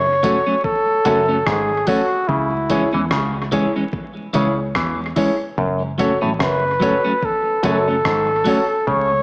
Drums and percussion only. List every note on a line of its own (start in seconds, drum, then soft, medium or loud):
0.23 kick medium
0.23 closed hi-hat medium
0.64 kick loud
1.05 kick medium
1.05 closed hi-hat medium
1.47 kick loud
1.47 cross-stick loud
1.87 kick medium
1.87 open hi-hat medium
2.29 kick loud
2.70 kick loud
2.70 closed hi-hat medium
3.11 kick loud
3.11 cross-stick loud
3.52 kick medium
3.52 closed hi-hat medium
3.93 kick loud
4.34 kick medium
4.34 closed hi-hat medium
4.75 kick loud
4.75 cross-stick loud
5.16 kick medium
5.16 open hi-hat medium
5.58 kick loud
5.99 kick medium
5.99 closed hi-hat medium
6.40 kick loud
6.40 cross-stick loud
6.81 kick medium
6.81 closed hi-hat medium
7.23 kick loud
7.63 kick medium
7.63 closed hi-hat medium
8.05 kick loud
8.05 cross-stick loud
8.46 kick medium
8.46 open hi-hat medium
8.88 kick loud